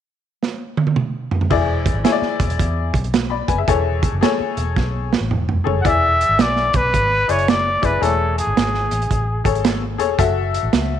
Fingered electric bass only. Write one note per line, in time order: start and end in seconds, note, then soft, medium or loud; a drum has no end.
1.50 1.89 E1 loud
1.94 2.03 G#1 medium
2.22 muted fingered electric bass stroke soft
2.40 2.57 E1 medium
2.59 2.90 E2 medium
2.93 3.41 B1 medium
3.49 3.66 F#1 medium
3.67 4.06 E1 loud
4.13 4.21 F#1 medium
4.40 muted fingered electric bass stroke soft
4.57 4.74 E1 medium
4.76 5.15 B1 medium
5.21 5.29 A1 medium
5.31 5.61 E1 medium
5.66 5.83 F#1 medium
5.85 6.23 E1 loud
6.29 6.38 G#1 medium
6.39 6.69 B1 medium
6.74 6.91 B1 medium
6.93 7.24 G#1 medium
7.29 7.76 F#1 medium
7.82 7.99 F#1 medium
8.02 8.41 E1 medium
8.47 8.55 G#1 medium
8.57 8.87 G#1 medium
8.92 9.08 A1 medium
9.11 9.41 A1 medium
9.45 9.99 G#1 medium
9.99 10.16 E1 medium
10.19 10.57 F#1 medium
10.63 10.71 A1 medium
10.73 11.00 C#2 medium